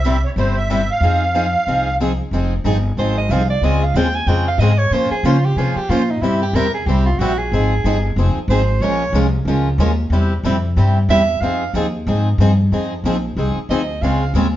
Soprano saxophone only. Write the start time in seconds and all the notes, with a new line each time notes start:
2.99 C5
3.18 D#5
3.31 F5
3.50 D5
3.64 D#5
3.84 F5
3.97 G5
4.15 G#5
4.28 G5
4.48 F5
4.60 D#5
4.78 C#5
4.93 C5
5.11 G#4
5.26 F4
5.45 G4
5.58 G#4
5.77 G4
5.90 F4
6.11 D#4
6.22 E4
6.43 G4
6.55 A#4
6.74 G#4
6.86 G4
7.06 F4
7.19 F#4
7.38 G#4
8.50 C5
8.82 C#5
11.10 E5
11.41 F5
13.70 D#5
14.02 F5